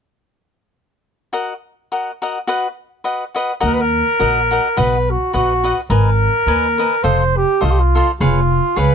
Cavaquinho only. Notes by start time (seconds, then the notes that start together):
1.33 F#4 A#4 D#5 F#5
1.92 F#4 A#4 D#5 F#5
2.22 F#4 A#4 D#5 F#5
2.47 F#4 B4 D#5 F#5
3.04 F#4 B4 D#5 F#5
3.35 F#4 B4 D#5 F#5
3.60 F#4 A#4 D#5 F#5
4.19 F#4 A#4 D#5 F#5
4.51 F#4 A#4 D#5 F#5
4.77 F#4 B4 D#5 F#5
5.33 F#4 B4 D#5 F#5
5.64 F#4 B4 D#5 F#5
5.90 A#4 B4 D#5 G#5
6.47 A#4 B4 D#5 G#5
6.78 A#4 B4 D#5 G#5
7.04 F4 A4 C5 D#5
7.61 F4 A4 C5 D#5
7.95 F4 A4 C5 D#5
8.21 G#4 B4 C#5 F5
8.76 G#4 B4 C#5 F5